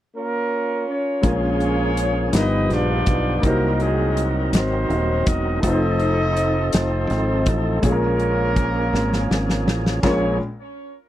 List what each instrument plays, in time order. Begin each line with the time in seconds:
0.15 horn section A#3 C#4 F4 A#4
0.89 horn section C#4 C#5
1.21 fingered electric bass A#1, grand piano A#2 G#3 C#4 F4 A#4, tonewheel organ F3 A#3 C#4 G#4, horn section F4 G#4, kick, closed hi-hat
1.26 horn section C#4 C#5
1.60 closed hi-hat
1.97 closed hi-hat
2.32 fingered electric bass G1, grand piano G2 G3 D#4 F4 A#4, tonewheel organ F3 A#3 D#4 G4, horn section D#4 B4 D#5, snare, closed hi-hat
2.39 tonewheel organ B3, grand piano B4
2.70 fingered electric bass A#1, horn section D4 F4 B4 D5, snare, closed hi-hat
3.06 fingered electric bass B1, kick, closed hi-hat
3.40 fingered electric bass C2, grand piano C3 A#3 D#4, tonewheel organ D#4 A#4, kick, closed hi-hat
3.44 tonewheel organ F#3 C4, horn section A#3 D#4 F#4 A#4, grand piano F#4 C5
3.80 horn section G#3 G#4, closed hi-hat
4.17 closed hi-hat
4.53 fingered electric bass G#1, horn section C4 D#4 F#4 C5, snare, closed hi-hat
4.90 fingered electric bass D#1, closed hi-hat
5.26 fingered electric bass E1, horn section D#4 D#5, kick, closed hi-hat
5.60 fingered electric bass F1, tonewheel organ F3 C4 D#4 A4, grand piano A3 D#4, horn section D#4 A4 C5 D#5, kick, closed hi-hat
5.65 grand piano F4 B4
5.73 grand piano C5
6.00 closed hi-hat
6.37 closed hi-hat
6.73 fingered electric bass F1, horn section C4 D#4 A4 C5, snare, closed hi-hat
7.10 fingered electric bass G#1, snare, closed hi-hat
7.46 fingered electric bass A1, horn section A3 A4, kick, closed hi-hat
7.80 fingered electric bass A#1, grand piano A#2 G#3 C#4 F4, tonewheel organ F3 A#3 C4 G#4, kick, closed hi-hat
7.85 horn section A#3 C#4 F4 A#4, grand piano G#4
7.89 tonewheel organ C#4, grand piano A#4
8.20 closed hi-hat
8.56 kick, closed hi-hat
8.93 fingered electric bass G#1, snare
9.13 snare
9.31 fingered electric bass G#1, snare
9.50 snare
9.67 fingered electric bass A1, snare
9.86 snare
10.03 grand piano A#1 G#3 C#4 F4 A#4, fingered electric bass A#1, tonewheel organ F3 A#3 C#4 G#4, horn section C#4 C#5, kick, snare, ride bell